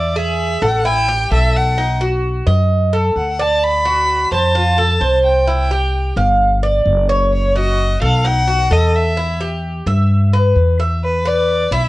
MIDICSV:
0, 0, Header, 1, 4, 480
1, 0, Start_track
1, 0, Key_signature, 1, "minor"
1, 0, Tempo, 462606
1, 1841, Time_signature, 4, 2, 24, 8
1, 12332, End_track
2, 0, Start_track
2, 0, Title_t, "Violin"
2, 0, Program_c, 0, 40
2, 0, Note_on_c, 0, 74, 85
2, 177, Note_on_c, 0, 76, 90
2, 193, Note_off_c, 0, 74, 0
2, 646, Note_on_c, 0, 78, 102
2, 662, Note_off_c, 0, 76, 0
2, 896, Note_on_c, 0, 79, 109
2, 911, Note_off_c, 0, 78, 0
2, 1368, Note_off_c, 0, 79, 0
2, 1382, Note_on_c, 0, 76, 102
2, 1620, Note_on_c, 0, 78, 88
2, 1636, Note_off_c, 0, 76, 0
2, 2091, Note_off_c, 0, 78, 0
2, 3292, Note_on_c, 0, 78, 90
2, 3539, Note_on_c, 0, 81, 95
2, 3555, Note_off_c, 0, 78, 0
2, 3777, Note_on_c, 0, 83, 112
2, 3792, Note_off_c, 0, 81, 0
2, 4489, Note_off_c, 0, 83, 0
2, 4501, Note_on_c, 0, 81, 101
2, 5410, Note_off_c, 0, 81, 0
2, 5454, Note_on_c, 0, 79, 84
2, 6367, Note_off_c, 0, 79, 0
2, 7604, Note_on_c, 0, 73, 89
2, 7853, Note_on_c, 0, 75, 100
2, 7868, Note_off_c, 0, 73, 0
2, 8322, Note_off_c, 0, 75, 0
2, 8329, Note_on_c, 0, 77, 98
2, 8576, Note_on_c, 0, 78, 113
2, 8592, Note_off_c, 0, 77, 0
2, 9056, Note_on_c, 0, 75, 95
2, 9071, Note_off_c, 0, 78, 0
2, 9295, Note_on_c, 0, 76, 89
2, 9310, Note_off_c, 0, 75, 0
2, 9768, Note_off_c, 0, 76, 0
2, 11456, Note_on_c, 0, 71, 89
2, 11699, Note_on_c, 0, 74, 93
2, 11715, Note_off_c, 0, 71, 0
2, 12168, Note_on_c, 0, 76, 89
2, 12183, Note_off_c, 0, 74, 0
2, 12332, Note_off_c, 0, 76, 0
2, 12332, End_track
3, 0, Start_track
3, 0, Title_t, "Cuban tres"
3, 0, Program_c, 1, 25
3, 0, Note_on_c, 1, 76, 82
3, 149, Note_off_c, 1, 76, 0
3, 164, Note_on_c, 1, 68, 77
3, 628, Note_off_c, 1, 68, 0
3, 643, Note_on_c, 1, 69, 74
3, 875, Note_off_c, 1, 69, 0
3, 881, Note_on_c, 1, 64, 84
3, 1114, Note_off_c, 1, 64, 0
3, 1124, Note_on_c, 1, 67, 76
3, 1356, Note_off_c, 1, 67, 0
3, 1363, Note_on_c, 1, 69, 70
3, 1828, Note_off_c, 1, 69, 0
3, 1843, Note_on_c, 1, 63, 79
3, 2075, Note_off_c, 1, 63, 0
3, 2082, Note_on_c, 1, 66, 73
3, 2547, Note_off_c, 1, 66, 0
3, 2558, Note_on_c, 1, 75, 77
3, 3025, Note_off_c, 1, 75, 0
3, 3041, Note_on_c, 1, 69, 70
3, 3507, Note_off_c, 1, 69, 0
3, 3522, Note_on_c, 1, 74, 77
3, 3987, Note_off_c, 1, 74, 0
3, 3998, Note_on_c, 1, 66, 68
3, 4466, Note_off_c, 1, 66, 0
3, 4481, Note_on_c, 1, 72, 73
3, 4714, Note_off_c, 1, 72, 0
3, 4722, Note_on_c, 1, 65, 81
3, 4955, Note_off_c, 1, 65, 0
3, 4960, Note_on_c, 1, 69, 76
3, 5194, Note_off_c, 1, 69, 0
3, 5198, Note_on_c, 1, 72, 70
3, 5666, Note_off_c, 1, 72, 0
3, 5680, Note_on_c, 1, 64, 77
3, 5914, Note_off_c, 1, 64, 0
3, 5923, Note_on_c, 1, 67, 78
3, 6388, Note_off_c, 1, 67, 0
3, 6401, Note_on_c, 1, 77, 73
3, 6867, Note_off_c, 1, 77, 0
3, 6881, Note_on_c, 1, 74, 74
3, 7347, Note_off_c, 1, 74, 0
3, 7359, Note_on_c, 1, 73, 77
3, 7826, Note_off_c, 1, 73, 0
3, 7840, Note_on_c, 1, 66, 74
3, 8307, Note_off_c, 1, 66, 0
3, 8316, Note_on_c, 1, 69, 80
3, 8552, Note_off_c, 1, 69, 0
3, 8557, Note_on_c, 1, 63, 84
3, 8792, Note_off_c, 1, 63, 0
3, 8795, Note_on_c, 1, 66, 72
3, 9032, Note_off_c, 1, 66, 0
3, 9037, Note_on_c, 1, 69, 69
3, 9505, Note_off_c, 1, 69, 0
3, 9517, Note_on_c, 1, 64, 81
3, 9752, Note_off_c, 1, 64, 0
3, 9760, Note_on_c, 1, 67, 73
3, 10226, Note_off_c, 1, 67, 0
3, 10239, Note_on_c, 1, 76, 79
3, 10706, Note_off_c, 1, 76, 0
3, 10722, Note_on_c, 1, 71, 75
3, 11187, Note_off_c, 1, 71, 0
3, 11202, Note_on_c, 1, 76, 73
3, 11434, Note_off_c, 1, 76, 0
3, 11678, Note_on_c, 1, 71, 79
3, 12145, Note_off_c, 1, 71, 0
3, 12160, Note_on_c, 1, 64, 93
3, 12332, Note_off_c, 1, 64, 0
3, 12332, End_track
4, 0, Start_track
4, 0, Title_t, "Upright bass"
4, 0, Program_c, 2, 32
4, 0, Note_on_c, 2, 40, 88
4, 574, Note_off_c, 2, 40, 0
4, 641, Note_on_c, 2, 33, 98
4, 1320, Note_off_c, 2, 33, 0
4, 1362, Note_on_c, 2, 35, 92
4, 2496, Note_off_c, 2, 35, 0
4, 2559, Note_on_c, 2, 42, 93
4, 3239, Note_off_c, 2, 42, 0
4, 3277, Note_on_c, 2, 38, 76
4, 4414, Note_off_c, 2, 38, 0
4, 4477, Note_on_c, 2, 41, 99
4, 5158, Note_off_c, 2, 41, 0
4, 5195, Note_on_c, 2, 36, 87
4, 6333, Note_off_c, 2, 36, 0
4, 6394, Note_on_c, 2, 31, 97
4, 7077, Note_off_c, 2, 31, 0
4, 7114, Note_on_c, 2, 30, 88
4, 8253, Note_off_c, 2, 30, 0
4, 8317, Note_on_c, 2, 35, 101
4, 8998, Note_off_c, 2, 35, 0
4, 9037, Note_on_c, 2, 40, 82
4, 10174, Note_off_c, 2, 40, 0
4, 10233, Note_on_c, 2, 43, 100
4, 10916, Note_off_c, 2, 43, 0
4, 10955, Note_on_c, 2, 40, 87
4, 12092, Note_off_c, 2, 40, 0
4, 12152, Note_on_c, 2, 35, 97
4, 12332, Note_off_c, 2, 35, 0
4, 12332, End_track
0, 0, End_of_file